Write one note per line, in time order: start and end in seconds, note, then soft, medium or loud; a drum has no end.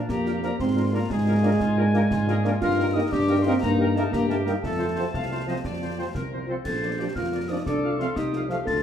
0.08 0.51 F2 medium
0.08 0.40 A#3 medium
0.08 0.56 G4 medium
0.08 0.41 A#5 medium
0.08 concert bass drum medium
0.08 snare medium
0.26 0.32 A#3 medium
0.26 0.32 D4 medium
0.26 0.32 F4 medium
0.26 0.32 A#4 medium
0.26 snare medium
0.42 0.48 F3 medium
0.42 0.58 A#3 medium
0.42 0.49 A#3 medium
0.42 0.49 D4 medium
0.42 0.49 F4 medium
0.42 0.49 A#4 medium
0.42 0.59 A#5 medium
0.42 snare soft
0.59 1.01 G#2 medium
0.59 0.95 C4 medium
0.59 1.10 F4 medium
0.59 0.96 C6 medium
0.59 concert bass drum medium
0.59 snare medium
0.76 0.82 A#3 medium
0.76 0.82 D4 medium
0.76 0.82 F4 medium
0.76 0.82 A#4 medium
0.92 0.99 A#3 medium
0.92 1.09 A#3 medium
0.92 1.00 A#3 medium
0.92 0.98 D4 medium
0.92 0.99 D4 medium
0.92 0.99 F4 medium
0.92 1.00 A#4 medium
0.92 1.13 A#5 medium
1.09 1.51 G#2 medium
1.09 2.57 G#3 loud
1.09 1.57 G#4 medium
1.09 2.61 G#5 medium
1.09 concert bass drum medium
1.09 snare medium
1.25 1.32 A#3 medium
1.25 1.32 D4 medium
1.25 1.32 F4 medium
1.25 1.33 A#4 medium
1.42 1.49 A#3 medium
1.42 1.49 D4 medium
1.42 1.49 F4 medium
1.42 1.50 A#4 medium
1.59 2.02 G#2 medium
1.59 1.77 F4 medium
1.59 concert bass drum medium
1.59 snare medium
1.77 1.83 A#3 medium
1.77 1.83 D4 medium
1.77 1.86 D4 medium
1.77 1.83 F4 medium
1.77 1.83 A#4 medium
1.93 2.00 A#3 medium
1.93 1.99 D4 medium
1.93 2.00 D4 medium
1.93 2.03 D#4 medium
1.93 1.99 F4 medium
1.93 2.01 A#4 medium
1.93 snare soft
2.11 2.53 G#2 medium
2.11 2.27 F4 medium
2.11 concert bass drum medium
2.11 snare medium
2.26 2.33 A#3 medium
2.26 2.33 D4 medium
2.26 2.32 F4 medium
2.26 2.43 G#4 medium
2.26 2.35 A#4 medium
2.26 snare soft
2.44 2.50 A#3 medium
2.44 2.50 D4 medium
2.44 2.50 F4 medium
2.44 2.61 F4 medium
2.44 2.51 A#4 medium
2.44 snare soft
2.61 3.03 G2 medium
2.61 2.97 F4 loud
2.61 3.09 A#4 medium
2.61 2.95 F6 loud
2.61 concert bass drum medium
2.61 snare medium
2.61 crash soft
2.77 2.84 A#3 medium
2.77 2.84 D#4 medium
2.77 2.84 G4 medium
2.77 2.86 A#4 medium
2.94 3.01 A#3 medium
2.94 3.02 A#3 medium
2.94 3.00 D#4 medium
2.94 3.14 D#4 loud
2.94 3.02 D#4 medium
2.94 3.01 G4 medium
2.94 3.01 A#4 medium
2.94 3.13 D#6 medium
3.11 3.54 G2 medium
3.11 3.46 D4 loud
3.11 3.59 G4 medium
3.11 3.44 D6 medium
3.11 concert bass drum medium
3.11 snare medium
3.28 3.34 A#3 medium
3.28 3.34 D#4 medium
3.28 3.35 G4 medium
3.28 3.35 A#4 medium
3.42 3.51 A#3 medium
3.42 3.52 A#3 medium
3.42 3.61 C4 medium
3.42 3.51 D#4 medium
3.42 3.52 D#4 medium
3.42 3.51 G4 medium
3.42 3.60 C6 medium
3.47 3.53 A#4 medium
3.60 4.05 G2 medium
3.60 3.98 A#3 loud
3.60 4.09 D#4 medium
3.60 3.98 A#5 medium
3.60 concert bass drum medium
3.60 snare medium
3.78 3.85 A#3 medium
3.78 3.85 D#4 medium
3.78 3.84 G4 medium
3.78 3.87 A#4 medium
3.95 4.11 A3 loud
3.95 4.01 A#3 medium
3.95 4.02 A#3 medium
3.95 4.01 D#4 medium
3.95 4.02 D#4 medium
3.95 4.01 G4 medium
3.95 4.03 A#4 medium
3.95 4.14 A5 medium
3.95 snare medium
4.12 4.52 G2 medium
4.12 4.28 A#3 loud
4.12 4.60 G4 medium
4.12 4.29 A#5 medium
4.12 concert bass drum medium
4.12 snare medium
4.29 4.45 A3 medium
4.29 4.35 A#3 medium
4.29 4.35 D#4 medium
4.29 4.35 G4 medium
4.29 4.36 A#4 medium
4.29 4.35 A5 medium
4.29 snare medium
4.46 4.53 G3 medium
4.46 4.52 A#3 medium
4.46 4.53 A#3 medium
4.46 4.52 D#4 medium
4.46 4.53 D#4 medium
4.46 4.52 G4 medium
4.46 4.52 A#4 medium
4.46 4.53 G5 medium
4.46 snare medium
4.62 5.06 F2 medium
4.62 6.10 A3 medium
4.62 5.08 A4 medium
4.62 6.10 A5 medium
4.62 concert bass drum medium
4.62 snare medium
4.78 4.85 F3 medium
4.78 4.85 C4 medium
4.78 4.85 F4 medium
4.78 4.85 C5 medium
4.95 5.03 F3 medium
4.95 5.04 F3 medium
4.95 5.03 C4 medium
4.95 5.04 C4 medium
4.95 5.03 F4 medium
4.95 5.01 C5 medium
5.14 5.56 C2 medium
5.14 5.45 F5 medium
5.14 concert bass drum medium
5.14 snare medium
5.31 5.37 F3 medium
5.31 5.37 C4 medium
5.31 5.37 F4 medium
5.31 5.37 C5 medium
5.46 5.53 F3 medium
5.46 5.53 C4 medium
5.46 5.52 F4 medium
5.46 5.54 C5 medium
5.46 5.55 D#5 medium
5.64 6.06 F2 medium
5.64 5.96 D5 medium
5.64 concert bass drum medium
5.64 snare medium
5.80 5.86 F3 medium
5.80 5.87 C4 medium
5.80 5.86 F4 medium
5.80 5.88 C5 soft
5.98 6.04 F3 soft
5.98 6.04 F3 medium
5.98 6.04 C4 medium
5.98 6.04 C4 soft
5.98 6.04 F4 soft
5.98 6.04 C5 medium
5.98 6.06 C5 medium
6.15 6.57 C2 medium
6.15 6.46 A#4 medium
6.15 concert bass drum medium
6.15 snare medium
6.31 6.37 F3 medium
6.31 6.37 C4 medium
6.31 6.37 F4 medium
6.31 6.38 C5 soft
6.47 6.53 F3 soft
6.47 6.54 F3 medium
6.47 6.53 C4 soft
6.47 6.54 C4 medium
6.47 6.54 F4 soft
6.47 6.56 A4 medium
6.47 6.54 C5 soft
6.64 7.08 A#1 medium
6.64 7.01 A4 loud
6.64 7.12 C5 medium
6.64 6.96 A6 medium
6.64 concert bass drum medium
6.64 snare medium
6.64 crash soft
6.82 6.88 F3 medium
6.82 6.88 A#3 medium
6.82 6.88 F4 medium
6.82 6.89 D5 medium
6.98 7.05 F3 medium
6.98 7.07 F3 medium
6.98 7.04 A#3 medium
6.98 7.06 D4 medium
6.98 7.04 F4 soft
6.98 7.16 G4 medium
6.98 7.05 D5 medium
6.98 7.04 G6 medium
7.16 7.58 F2 medium
7.16 7.52 F4 medium
7.16 7.51 A#4 medium
7.16 7.50 F6 medium
7.16 concert bass drum medium
7.16 snare medium
7.32 7.38 F3 medium
7.32 7.38 A#3 medium
7.32 7.38 F4 medium
7.32 7.39 D5 medium
7.48 7.55 F3 medium
7.48 7.56 F3 medium
7.48 7.56 A#3 medium
7.48 7.56 D4 medium
7.48 7.66 D#4 medium
7.48 7.56 F4 medium
7.48 7.56 D5 medium
7.48 7.66 D#6 medium
7.66 8.08 C2 medium
7.66 7.98 D4 loud
7.66 8.13 A4 medium
7.66 8.00 D6 medium
7.66 concert bass drum medium
7.66 snare medium
7.83 7.89 F3 medium
7.83 7.89 A3 medium
7.83 7.89 F4 medium
7.83 7.89 F5 medium
7.99 8.05 F3 medium
7.99 8.06 A3 medium
7.99 8.07 C4 medium
7.99 8.06 F4 medium
7.99 8.07 F5 medium
7.99 8.17 C6 medium
7.99 snare soft
8.16 8.59 C2 medium
8.16 8.48 D#4 medium
8.16 8.64 G4 medium
8.16 8.50 D#6 medium
8.16 concert bass drum medium
8.16 snare medium
8.33 8.39 F3 medium
8.33 8.40 A3 medium
8.33 8.40 F4 medium
8.33 8.41 F5 medium
8.33 snare soft
8.49 8.55 F3 medium
8.49 8.55 A3 medium
8.49 8.56 A3 medium
8.49 8.56 F4 medium
8.49 8.58 F4 medium
8.49 8.58 F5 medium
8.49 8.56 F6 medium
8.49 snare soft
8.65 8.83 D2 medium
8.65 8.83 F4 medium
8.65 8.83 A4 loud
8.65 8.83 A6 medium
8.65 concert bass drum medium
8.65 snare medium